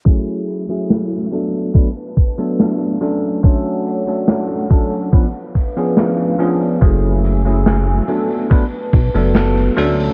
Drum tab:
HH |x-xxx-xxx-xxxxxx|x-xxx-xxx-xxxxxx|x-xxx-xxx-xxxxxx|
SD |----o-------o---|----o-------o---|----o-------o---|
BD |o-------o-o-----|o-----o-o-o-----|o-------o-o-----|